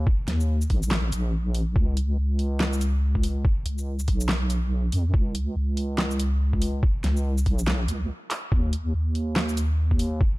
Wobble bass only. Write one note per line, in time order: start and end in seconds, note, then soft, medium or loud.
0.28 0.69 D#2 loud
0.70 1.11 A#1 loud
1.13 1.74 A#1 loud
1.76 2.17 C#2 loud
2.18 3.43 C#2 loud
3.66 4.07 C#2 loud
4.08 4.91 B1 loud
4.93 5.12 F2 loud
5.14 5.55 C#2 loud
5.56 6.81 C#2 loud
7.04 7.45 C#2 loud
7.46 7.87 B1 loud
7.88 8.09 C#2 loud
8.52 8.93 D#2 loud
8.94 10.19 D#2 loud